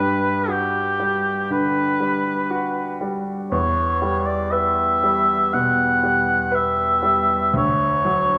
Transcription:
Already playing: grand piano G2 G3, oboe B4
0.48 grand piano F#4, oboe G4
1.00 grand piano G3
1.50 grand piano D3, oboe B4
2.00 grand piano G3
2.51 grand piano F#4
3.01 grand piano G3
3.51 grand piano E2, oboe C#5
4.02 grand piano G3
4.26 oboe D5
4.51 grand piano B4, oboe E5
5.03 grand piano G3
5.53 grand piano B2, oboe F#5
6.03 grand piano G3
6.52 grand piano B4, oboe E5
7.03 grand piano G3
7.54 grand piano D2, oboe C#5
8.05 grand piano F#3

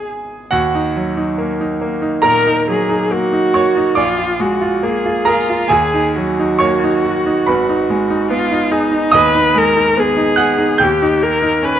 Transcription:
Already playing: grand piano G#1 G#3 B3 D#4 G#4 G#5
0.51 grand piano D#2 F#4 F#5
0.75 grand piano D#4
0.96 grand piano F#3
1.17 grand piano D#4
1.38 grand piano A#3
1.61 grand piano D#4
1.81 grand piano A#3
2.02 grand piano D#4
2.22 grand piano A#2 A#4 A#5, viola A#4
2.46 grand piano D#4
2.69 grand piano F#3, viola G#4
2.89 grand piano D#4
3.11 grand piano A#3, viola F#4
3.33 grand piano D#4
3.54 grand piano A#3 C#5 C#6
3.77 grand piano D#4
3.95 grand piano A#1 D5 D6, viola F4
4.18 grand piano F4
4.40 grand piano G#3, viola F#4
4.61 grand piano F4
4.83 grand piano A#3, viola G#4
5.06 grand piano F4
5.25 viola F4, grand piano G#4 A#4 A#5
5.50 grand piano F4
5.68 grand piano D#2 G#4 G#5, viola G#4
5.94 grand piano D#4
6.16 grand piano F#3, viola F#4
6.39 grand piano D#4
6.59 grand piano A#3 C#5 C#6
6.84 grand piano D#4
7.06 grand piano F#4
7.26 grand piano D#4
7.46 grand piano G#1 B4 B5
7.69 grand piano D#4
7.90 grand piano G#3
8.10 grand piano D#4
8.30 grand piano B3, viola F4
8.51 grand piano D#4
8.71 viola D#4, grand piano G#4
8.92 grand piano D#4
9.12 grand piano D#2 D#5 D#6, viola B4
9.35 grand piano D#4
9.55 grand piano G#3, viola A#4
9.76 grand piano D#4
9.97 grand piano B3, viola G#4
10.17 grand piano D#4
10.36 grand piano G#4 F#5 F#6
10.58 grand piano D#4
10.78 grand piano D#2 G5 G6
10.83 viola G4
11.02 grand piano D#4
11.22 grand piano A#3, viola A#4
11.42 grand piano D#4
11.62 grand piano C#4, viola B4

